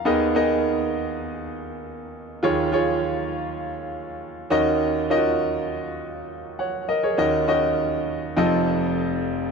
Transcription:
<<
  \new Staff \with { instrumentName = "Grand piano" } { \time 4/4 \key ees \minor \tempo 4 = 101 << { r1 | r1 | r2. <des'' ges''>8 <bes' ees''>16 <aes' des''>16~ | <aes' des''>16 r2. r8. | } \\ { <ces' ees' aes' bes' ees''>8 <ces' ees' aes' bes' ees''>4. r2 | <f' aes' des''>8 <f' aes' des''>4. r4. <des' ees' ges' bes' ees''>8~ | <des' ees' ges' bes' ees''>8 <des' ees' f' ges' bes' ees''>4. r2 | <des' ees' ges' bes' ees''>8 <des' ees' ges' bes' ees''>4. <c' ees' f' a' ees''>4. r8 | } >> }
  \new Staff \with { instrumentName = "Grand piano" } { \clef bass \time 4/4 \key ees \minor <ees, ees>1 | <ees, ees>2.~ <ees, ees>8 <ees, ees>8~ | <ees, ees>2.~ <ees, ees>8 r8 | <ees, ees>2 <f,, f,>2 | }
>>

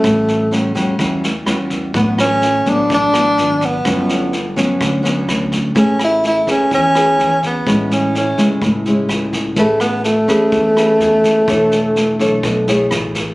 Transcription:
<<
  \new Staff \with { instrumentName = "Nylon-string guitar" } { \time 4/4 \key a \major \tempo 4 = 126 << { <g cis' fis'>4 <g cis' fis'>8 <g cis' fis'>8 <g cis' fis'>8 r8 <g cis' fis'>4 | <fis b d'>4 r8 <fis b d'>4 <fis b d'>4. | <fis b cis'>4 r8 <fis b cis'>4 <fis b cis'>4. | <cis' gis' b'>4. <cis' gis' b'>4 <cis' gis' b'>4. |
<gis cis' e'>4 r8 <gis cis' e'>4 <gis cis' e'>4. | <cis' gis' b'>4 r8 <cis' gis' b'>4 <cis' gis' b'>4. | <d' a' cis''>4. <d' a' cis''>4 <e' gis' cis''>4. | } \\ { a,2 e2 | a,2 r2 | g,2 d2 | a2 e2 |
a,2 a,2 | a2 e2 | e2 b,4 r4 | } >> }
  \new Staff \with { instrumentName = "Tenor saxophone" } { \time 4/4 \key a \major a4. r2 r8 | b8 cis'4 d'8 d'4. b8~ | b4. r2 r8 | cis'8 e'8 e'8 cis'8 cis'4. b8~ |
b8 cis'8 cis'4 r2 | a8 b8 a2.~ | a2. r4 | }
  \new Staff \with { instrumentName = "Upright bass" } { \clef bass \time 4/4 \key a \major a,,4. e,8 e,4 e,4 | a,,4. a,,8 a,,4 gis,,4 | g,,4. d,8 d,4 d,4 | a,,4. e,8 e,4 e,4 |
a,,4. cis,8 cis,4 cis,4 | a,,4. e,8 e,4 e,4 | e,,4. b,,8 b,,4 a,,4 | }
  \new DrumStaff \with { instrumentName = "Drums" } \drummode { \time 4/4 <bd ss sn>8 sn8 sn8 <bd sn>8 <bd ss sn>8 sn8 <ss sn>8 <bd sn>8 | <bd sn>8 <ss sn>8 sn8 <bd sn>8 <bd sn>8 <ss sn>8 sn8 <bd sn>8 | <bd ss sn>8 sn8 sn8 <bd sn>8 <bd ss sn>8 sn8 <ss sn>8 <bd sn>8 | <bd sn>8 <ss sn>8 sn8 <bd sn>8 <bd sn>8 <ss sn>8 sn8 <bd sn>8 |
<bd ss sn>8 sn8 sn8 <bd sn>8 <bd ss sn>8 sn8 <ss sn>8 <bd sn>8 | <bd sn>8 <ss sn>8 sn8 <bd sn>8 <bd sn>8 <ss sn>8 sn8 <bd sn>8 | <bd ss sn>8 sn8 sn8 <bd sn>8 <bd ss sn>8 sn8 <ss sn>8 <bd sn>8 | }
>>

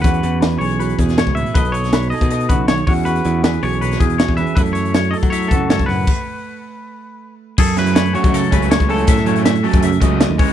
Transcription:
<<
  \new Staff \with { instrumentName = "Clean electric guitar" } { \time 4/4 \key fis \dorian \tempo 4 = 159 b'4 r8 cis''4 r4 e''8 | b'8 cis''4 dis''4 b'8 cis''8 cis''8 | b'4 r8 cis''4 r4 e''8 | b'8 cis''4 dis''8 cis''8 a'4 b'8~ |
b'2.~ b'8 r8 | a'8 b'4 cis''2 a'8~ | a'4 r2. | }
  \new Staff \with { instrumentName = "Clean electric guitar" } { \time 4/4 \key fis \dorian fis'4 b'8 cis''8 b'8 gis'8 cis''8 b'8 | dis''4 b'8 gis'8 dis''8 fis'8 cis''8 fis''8 | fis'4 b'8 cis''8 b'8 gis'8 cis''8 b'8 | e''4 cis''8 a'8 e''8 fis'8 cis''8 fis''8 |
r1 | gis'8 e'8 cis''8 fis'8 a'8 b'8 cis''4 | e''8 cis''8 e''8 a'8 e''8 dis''4 cis''8 | }
  \new Staff \with { instrumentName = "Clean electric guitar" } { \time 4/4 \key fis \dorian << { <cis' fis' gis'>4. gis'8 fis'2 | <fis' a'>4. a'8 a'4. <cis' fis' gis'>8~ | <cis' fis' gis'>4 gis'8 fis'4 gis'8 fis'8 <cis' fis' gis'>8 | <a e' a'>4. a'8 e'2 |
r1 | r4 a2 a8 cis'16 e'16 | r4 a2 a8 r8 | } \\ { e,4 e4. b,8 gis,8 a,8 | b,4 dis'4. cis8 dis8 e,8~ | e,8 e4. b,4. e,8 | fis,4 fis4. cis8 gis,8 a,8 |
r1 | fis,8 fis4 fis8 cis8 fis4. | fis,8 fis4 fis8 cis8 fis4 cis8 | } >> }
  \new Staff \with { instrumentName = "Overdriven electric guitar" } { \clef bass \time 4/4 \key fis \dorian r1 | r1 | r1 | r1 |
r1 | r8 <cis fis a cis'>8 r8 <cis fis a cis'>8 r8 <cis fis a cis'>8 r8 <cis fis a cis'>8 | r8 <cis fis a cis'>8 r8 <cis fis a cis'>8 r8 <cis fis a cis'>8 r8 <cis e gis cis'>8 | }
  \new Staff \with { instrumentName = "Picked electric bass" } { \clef bass \time 4/4 \key fis \dorian e,8 e,4 b,,4 e,8. cis,8 r16 | b,,4.~ b,,16 b,8. b,,4 e,8~ | e,8 e,4 b,,4 e,8. e,8 r16 | fis,4.~ fis,16 fis8. fis,4 fis,8 |
r1 | fis,4.~ fis,16 fis8. cis,8. cis,8. | a,4.~ a,16 fis,8. cis,8. dis,16 cis,8 | }
  \new DrumStaff \with { instrumentName = "Drums" } \drummode { \time 4/4 <hh bd>16 hh16 hh8 <hh sn>16 hh16 hho16 hh16 hh16 hh16 <hh bd>16 <hh sn>16 <hh sn>16 bd16 hh16 hh16 | <hh bd>16 hh16 hh16 <hh sn>16 <hh sn>16 hh16 hho16 <hh bd>16 hh16 hh16 <hh bd>8 <hh sn>16 hh16 <hho bd>8 | hh16 hh16 hh8 <hh sn>16 hh16 hho16 hh16 hh16 <hh sn>16 <hh bd>16 hh16 <hh sn>16 bd16 hh16 hh16 | <hh bd>16 hh16 hh16 hh16 <hh sn>16 hh16 hho16 <hh bd>16 hh16 hh16 <hh bd>8 <hh sn>16 <hh bd>16 <hho sn>8 |
<cymc bd>4 r4 r4 r4 | <cymc bd>16 hh16 <hh sn>16 hh16 <hh sn>16 hh16 hh16 <hh bd>16 hh16 hh16 <hh bd>16 hh16 <hh sn>16 <hh bd>16 hho16 hh16 | <hh bd>16 <hh sn>16 hh16 hh16 <hh sn>16 <hh sn>16 hho16 <hh bd>16 hh16 hh16 <hh bd>8 <hh sn>8 <hho bd>16 hh16 | }
>>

